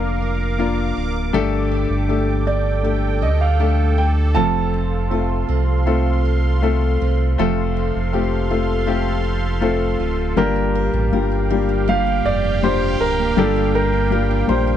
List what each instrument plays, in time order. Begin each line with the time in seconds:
Already playing: sub bass F1, grand piano D3 A#3 D4 F4 A#4, steel-string acoustic guitar D3 D4 F4 A#4, analog synth pad A#4 F5 D6
0.22 steel-string acoustic guitar A#4
0.58 grand piano A#3 D4 F4 A#4, steel-string acoustic guitar F4
0.97 sub bass D1, steel-string acoustic guitar D4
1.33 sub bass G1, grand piano G2 D3 A3 D4 G4 A4, steel-string acoustic guitar G2, analog synth pad A4 G5
1.71 steel-string acoustic guitar D4
1.90 sub bass G1
2.08 grand piano A3 D4 G4 A4, steel-string acoustic guitar G4
2.47 steel-string acoustic guitar D4, grand piano D5
2.83 grand piano A3 D4 G4 A4, steel-string acoustic guitar G4
3.22 sub bass D2, steel-string acoustic guitar A4, grand piano D#5
3.41 grand piano F5
3.59 grand piano A3 D4 G4 A4, steel-string acoustic guitar G4
3.98 steel-string acoustic guitar D4, grand piano G5
4.34 sub bass F1, grand piano C3 A3 C4 F4 A4 A5, steel-string acoustic guitar F3, analog synth pad F5 C6
4.74 steel-string acoustic guitar C4
5.10 grand piano A3 C4 F4 A4, steel-string acoustic guitar F4
5.49 sub bass C2, steel-string acoustic guitar C4
5.86 grand piano A3 C4 F4 A4, steel-string acoustic guitar F4
6.25 steel-string acoustic guitar A4
6.62 grand piano A3 C4 F4 A4, steel-string acoustic guitar F4
7.02 sub bass C2, steel-string acoustic guitar C4
7.38 sub bass F1, grand piano C3 A3 C4 F4 A4, steel-string acoustic guitar F3, analog synth pad A4 F5 C6
7.76 steel-string acoustic guitar C4
7.96 sub bass F1
8.13 grand piano A3 C4 F4 G4, steel-string acoustic guitar A4
8.50 grand piano A3 C4 F4 A4, steel-string acoustic guitar F4
8.86 grand piano A3 C4 F4 G4, steel-string acoustic guitar A4
9.24 steel-string acoustic guitar F4
9.60 grand piano A3 C4 F4 A4, steel-string acoustic guitar C4
9.99 sub bass D1, steel-string acoustic guitar F4
10.36 sub bass G1, steel-string acoustic guitar G2, grand piano G2 D3 G3 A#3 D4 F4 G4 A#4, analog synth pad G4 F5 G5
10.56 steel-string acoustic guitar A#3
10.75 steel-string acoustic guitar A#4
10.93 sub bass A1, steel-string acoustic guitar D4
11.12 sub bass G1, grand piano G3 A#3 D4 F4 G4, steel-string acoustic guitar A#4
11.32 steel-string acoustic guitar D4
11.50 grand piano G3 A#3 D4 F4 G4, steel-string acoustic guitar A#4
11.69 steel-string acoustic guitar A#3
11.88 steel-string acoustic guitar G2, grand piano G3 A#3 D4 F4 G4 F5
12.07 steel-string acoustic guitar A#3
12.25 sub bass F1, steel-string acoustic guitar A#4, grand piano D5
12.44 steel-string acoustic guitar D4
12.63 grand piano G3 A#3 D4 F4 G4 C5, steel-string acoustic guitar A#4
12.82 steel-string acoustic guitar D4
13.00 sub bass D1, grand piano A#4
13.19 steel-string acoustic guitar A#3
13.37 sub bass G1, grand piano G2 D3 G3 A#3 D4 F4 G4 A4, steel-string acoustic guitar G2
13.56 steel-string acoustic guitar A#3
13.75 steel-string acoustic guitar A#4, grand piano A#4
13.93 steel-string acoustic guitar D4
14.10 grand piano G3 A#3 D4 F4 A#4, steel-string acoustic guitar A#4
14.31 steel-string acoustic guitar D4
14.47 sub bass A#1, grand piano G3 A#3 D4 F4 A#4 C5, steel-string acoustic guitar A#4
14.67 steel-string acoustic guitar A#3